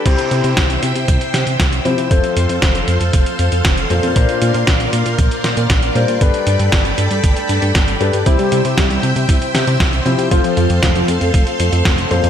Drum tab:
CC |x---------------|----------------|----------------|----------------|
HH |xxxxxxxxxxxxxxxx|xxxxxxxxxxxxxxxx|xxxxxxxxxxxxxxxx|xxxxxxxxxxxxxxxx|
SD |----o-----o-o---|----o-------o---|----o-----o-o---|----o-------o---|
BD |o---o---o---o---|o---o---o---o---|o---o---o---o---|o---o---o---o---|

CC |----------------|----------------|
HH |xxxxxxxxxxxxxxxx|xxxxxxxxxxxxxxxx|
SD |----o-----o-o---|----o-------o---|
BD |o---o---o---o---|o---o---o---o---|